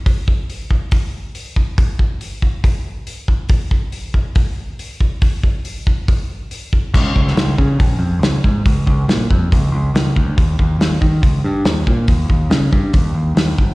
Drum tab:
CC |----------------|----------------|----------------|----------------|
HH |o---o---o---o---|o---o---o---o---|o---o---o---o---|o---o---o---o---|
SD |----------------|----------------|----------------|----------------|
BD |o-o---o-o-----o-|o-o---o-o-----o-|o-o---o-o-----o-|o-o---o-o-----o-|

CC |x---------------|----------------|----------------|----------------|
HH |----o---o---o---|o---o---o---o---|o---o---o---o---|o---o---o---o---|
SD |---oo-------o---|----o-------o---|----o-------o---|----o-------o---|
BD |o-o---o-o-----o-|o-o---o-o-----o-|o-o---o-o-----o-|o-o---o-o-----o-|